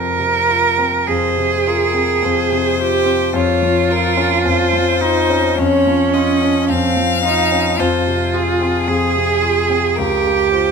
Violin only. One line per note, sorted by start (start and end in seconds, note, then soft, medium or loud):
1.08 1.69 C5 medium
1.67 2.26 A#4 medium
2.25 3.37 C5 medium
3.36 3.93 C#5 medium
3.91 4.45 A#4 medium
4.46 5.60 C5 medium
5.59 6.16 C#5 medium
6.14 6.68 D#5 medium
6.69 7.81 F5 loud
7.80 8.35 C5 medium
8.33 9.97 G#4 medium
9.96 10.51 A#4 medium
10.53 10.71 C5 medium